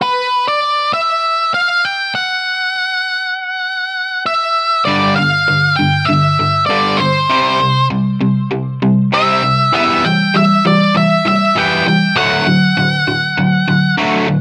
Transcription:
0.02 lead electric guitar B4
0.48 lead electric guitar D5
0.94 lead electric guitar E5
1.54 lead electric guitar F5
1.85 lead electric guitar G5
2.15 lead electric guitar F#5
4.26 lead electric guitar E5
4.85 overdriven electric guitar G2 D3 G3, lead electric guitar D5
5.16 overdriven electric guitar G2 D3, lead electric guitar F5
5.48 overdriven electric guitar G2 D3
5.76 overdriven electric guitar G2 D3, lead electric guitar G5
6.05 overdriven electric guitar G2, lead electric guitar E5
6.09 overdriven electric guitar D3
6.39 overdriven electric guitar G2 D3
6.66 overdriven electric guitar G2 D3, lead electric guitar D5
6.70 overdriven electric guitar G3
6.97 overdriven electric guitar G2 D3, lead electric guitar C5
7.30 overdriven electric guitar C3 G3 C4
7.60 overdriven electric guitar C3 G3
7.90 overdriven electric guitar C3 G3
8.21 overdriven electric guitar C3 G3
8.51 overdriven electric guitar C3 G3
8.82 overdriven electric guitar C3 G3
9.12 overdriven electric guitar C3 G3 C4, lead electric guitar E5
9.43 overdriven electric guitar C3 G3
9.73 overdriven electric guitar E3 G3 B3, lead electric guitar E5
10.04 overdriven electric guitar E3 G3, lead electric guitar G5
10.34 overdriven electric guitar E3 G3, lead electric guitar E5
10.65 overdriven electric guitar E3 G3, lead electric guitar D5
10.95 overdriven electric guitar E3 G3, lead electric guitar E5
11.25 overdriven electric guitar E3 G3, lead electric guitar E5
11.55 overdriven electric guitar E3 G3 B3, lead electric guitar G5
11.86 overdriven electric guitar E3 G3, lead electric guitar G5
12.16 overdriven electric guitar D3 F#3 A3, lead electric guitar F#5
12.47 overdriven electric guitar D3 F#3
12.77 overdriven electric guitar D3 F#3
13.07 overdriven electric guitar D3 F#3
13.37 overdriven electric guitar D3 F#3
13.68 overdriven electric guitar D3 F#3
13.98 overdriven electric guitar D3 F#3 A3
14.28 overdriven electric guitar D3 F#3

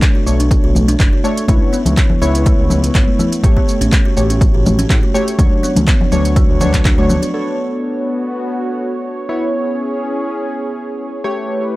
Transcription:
Already playing: synth keys A3 D4 C#5
0.02 kick, clap, closed hi-hat, shaker
0.15 kalimba F#4
0.26 analog synth bass B1, synth keys A3 D4 C#5, shaker
0.40 kalimba D4, closed hi-hat, shaker
0.51 kick, closed hi-hat, shaker
0.64 analog synth bass B1, kalimba F#4
0.75 high conga, low conga, shaker
0.88 kalimba D4, closed hi-hat, shaker
1.00 analog synth bass F#1, kick, clap, closed hi-hat, high conga, shaker
1.13 kalimba F#4
1.24 synth keys A3 D4 C#5, shaker
1.37 closed hi-hat, shaker
1.48 analog synth bass C#2, synth keys B3 E4 C#5, kalimba C#4, kick, closed hi-hat, high conga, shaker
1.73 kalimba B3, shaker
1.86 analog synth bass C#2, closed hi-hat, high conga, low conga, shaker
1.97 kalimba B3, kick, clap, closed hi-hat, shaker
2.10 low conga
2.22 analog synth bass C#2, synth keys B3 E4 C#5, kalimba B4, shaker
2.35 closed hi-hat, shaker
2.46 kalimba A3, kick, closed hi-hat, shaker
2.59 analog synth bass C#2
2.70 kalimba A3, low conga, shaker
2.83 closed hi-hat, high conga, shaker
2.95 analog synth bass G1, kalimba B3, kick, clap, closed hi-hat, shaker
3.08 high conga
3.19 kalimba A3, low conga, shaker
3.32 closed hi-hat, shaker
3.43 analog synth bass A1, synth keys A3 G4 C#5, kick, closed hi-hat, high conga, shaker
3.57 kalimba B3, kick
3.68 shaker
3.81 analog synth bass A1, kalimba C#4, closed hi-hat, high conga, shaker
3.92 kick, clap, closed hi-hat, shaker
4.05 kalimba F#4
4.17 analog synth bass A1, synth keys A3 G4 C#5, shaker
4.30 kalimba C#4, closed hi-hat, shaker
4.41 kick, closed hi-hat, shaker
4.54 analog synth bass A1, kalimba F#4
4.66 high conga, low conga, shaker
4.79 kalimba C#4, closed hi-hat, shaker
4.90 analog synth bass A2, kick, clap, closed hi-hat, high conga, shaker
5.03 kalimba F#4
5.14 synth keys A3 G4 C#5, shaker
5.28 closed hi-hat, shaker
5.39 analog synth bass D2, synth keys F#3 D4 C#5, kalimba D4, kick, closed hi-hat, high conga, shaker
5.63 kalimba B3, shaker
5.76 analog synth bass D2, closed hi-hat, high conga, low conga, shaker
5.87 kalimba B3, kick, clap, closed hi-hat, shaker
6.01 low conga
6.12 analog synth bass D2, synth keys F#3 D4 C#5, kalimba B4, shaker
6.25 closed hi-hat, shaker
6.36 kalimba A3, kick, closed hi-hat, high conga, shaker
6.49 analog synth bass D2
6.61 synth keys F#3 D4 C#5, kalimba B4, low conga, shaker
6.74 kick, clap, closed hi-hat, high conga, shaker
6.85 analog synth bass D2, kalimba D4, kick, clap, closed hi-hat, shaker
6.98 synth keys F#3 D4 C#5, kalimba F#4, high conga
7.09 kalimba B3, low conga, shaker
7.22 kalimba F#4, closed hi-hat, shaker
7.34 synth keys B3 D4 A4 C#5, analog synth pad B3 F#4 C#5
9.29 synth keys B3 E4 C#5, analog synth pad C#4 G#4
11.24 analog synth pad A3 E4 B4, synth keys A3 G4 C#5

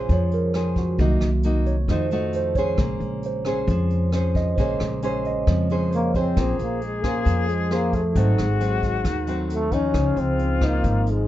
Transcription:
Already playing: tine electric piano C#3 G#3 F4 G#4 C5 C#5, nylon-string guitar C#4 G#4 C5
0.09 upright bass F2, nylon-string guitar F3, kick, closed hi-hat
0.13 tine electric piano C#5
0.31 tine electric piano A#4, closed hi-hat
0.54 nylon-string guitar C#4 G#4 C5, cross-stick, closed hi-hat
0.58 tine electric piano G#4
0.76 tine electric piano F#4, kick, closed hi-hat
0.98 upright bass C2, nylon-string guitar C3 A#3 D#4 F#4, tine electric piano D#3 F#3 A#3, kick, closed hi-hat
1.21 upright bass C2, cross-stick, closed hi-hat
1.43 nylon-string guitar A#3 D#4 F#4, closed hi-hat
1.66 tine electric piano C#5, closed hi-hat
1.88 upright bass F2, tine electric piano D#3 A3 C5, nylon-string guitar F3 A3 D#4 F#4, kick, cross-stick, closed hi-hat
2.11 nylon-string guitar A3 D#4 F#4, closed hi-hat
2.33 tine electric piano C5, closed hi-hat
2.55 nylon-string guitar C#4 G#4 C5, tine electric piano C#5, kick, closed hi-hat
2.76 upright bass A#1, tine electric piano C#3 G#3, nylon-string guitar A#3, kick, cross-stick, closed hi-hat
3.00 upright bass A#1, closed hi-hat
3.23 tine electric piano C5, closed hi-hat
3.45 nylon-string guitar C#4 G#4 C5, cross-stick, closed hi-hat
3.67 upright bass F2, nylon-string guitar F3, kick, closed hi-hat
3.90 closed hi-hat
4.12 nylon-string guitar C#4 G#4 C5, cross-stick, closed hi-hat
4.35 tine electric piano D#5, kick, closed hi-hat
4.56 upright bass A#1, tine electric piano C#3 G#3 C5, nylon-string guitar A#3 C#4 G#4, kick, closed hi-hat
4.60 nylon-string guitar C5, tine electric piano C#5
4.80 upright bass A#1, cross-stick, closed hi-hat
5.02 nylon-string guitar C#4 G#4 C5, tine electric piano C#5, closed hi-hat
5.25 tine electric piano D#5, closed hi-hat
5.47 upright bass F2, tine electric piano C#3 G#3 C4, nylon-string guitar F3, kick, cross-stick, closed hi-hat
5.69 nylon-string guitar C#4 G#4 C5, closed hi-hat
5.91 trombone A#3, tine electric piano C5, closed hi-hat
5.96 tine electric piano C#5
6.14 trombone C4, nylon-string guitar G#4 C5, kick, closed hi-hat
6.35 upright bass A#1, nylon-string guitar A#3, tine electric piano C#4 F4 G#4, flute G#4, kick, cross-stick, closed hi-hat
6.41 tine electric piano C5
6.59 upright bass A#1, trombone A#3, closed hi-hat
6.81 trombone G#3, closed hi-hat
7.04 trombone A#3, nylon-string guitar C#4 G#4 C5, kick, cross-stick, closed hi-hat
7.25 upright bass F2, nylon-string guitar F3, kick, closed hi-hat
7.48 trombone G#3, closed hi-hat
7.71 trombone A#3, nylon-string guitar C#4 G#4 C5, cross-stick, closed hi-hat
7.93 trombone A3, kick, closed hi-hat
8.13 upright bass G#1, nylon-string guitar G#2 F#3 A3 C4, tine electric piano D#4 F#4, flute F#4, kick, closed hi-hat
8.17 tine electric piano A4 C5
8.38 upright bass G#1, trombone G#3, cross-stick, closed hi-hat
8.60 nylon-string guitar F#3 C4, closed hi-hat
8.82 kick, closed hi-hat
9.04 upright bass D#2, nylon-string guitar D#3, kick, cross-stick, closed hi-hat
9.27 nylon-string guitar F#3 A3 C4, closed hi-hat
9.50 trombone A3, closed hi-hat
9.72 nylon-string guitar F3 D#4, trombone C#4, kick, closed hi-hat
9.88 tine electric piano D#4, flute F#4
9.94 upright bass C#2, nylon-string guitar C#3, tine electric piano F4 G#4 C5, flute F4, kick, cross-stick, closed hi-hat
10.16 upright bass C#2, trombone C4, closed hi-hat
10.39 closed hi-hat
10.61 nylon-string guitar F3 C4 D#4, kick, cross-stick, closed hi-hat
10.66 trombone A#3
10.84 upright bass G#1, nylon-string guitar G#2, kick, closed hi-hat
11.06 closed hi-hat
11.12 trombone G#3

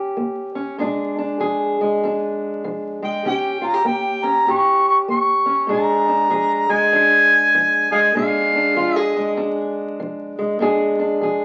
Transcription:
Already playing: steel-string acoustic guitar A#2 C#4 G4
0.17 steel-string acoustic guitar A#3
0.55 steel-string acoustic guitar C#4
0.79 steel-string acoustic guitar A#2 G#3 D4 G#4
1.18 steel-string acoustic guitar D4
1.40 steel-string acoustic guitar F3 G#4
1.81 steel-string acoustic guitar G#3
2.04 steel-string acoustic guitar F2 D4
2.64 steel-string acoustic guitar F3
3.02 steel-string acoustic guitar G#3, harmonica G5
3.25 steel-string acoustic guitar D#3 C#4 G4, harmonica G5
3.61 steel-string acoustic guitar F4
3.66 harmonica A#5
3.74 steel-string acoustic guitar G4
3.85 steel-string acoustic guitar A#3 G4, harmonica G5
4.23 steel-string acoustic guitar C#4, harmonica A#5
4.47 steel-string acoustic guitar A#2 G4
4.52 harmonica C#6
4.88 harmonica C#6
5.08 steel-string acoustic guitar A#3, harmonica C#6
5.46 steel-string acoustic guitar C#4
5.67 steel-string acoustic guitar A#2 G#3 D4 G#4
5.73 harmonica A#5
6.08 steel-string acoustic guitar D4
6.30 steel-string acoustic guitar F3 G#4
6.69 steel-string acoustic guitar G#3, harmonica G#5
6.92 steel-string acoustic guitar F2 D4
7.55 steel-string acoustic guitar F3
7.92 steel-string acoustic guitar G#3, harmonica D#5 F5 G#5
8.15 steel-string acoustic guitar A#2 G#3 D4 G#4, harmonica F5
8.55 steel-string acoustic guitar D4
8.76 steel-string acoustic guitar F3 F4
8.96 steel-string acoustic guitar G#4, harmonica D#5
9.16 steel-string acoustic guitar G#3
9.37 steel-string acoustic guitar F2 D4
10.00 steel-string acoustic guitar F3
10.39 steel-string acoustic guitar G#3
10.59 steel-string acoustic guitar A#2 G#3 D4 G#4
10.99 steel-string acoustic guitar D4
11.21 steel-string acoustic guitar F3 G#4

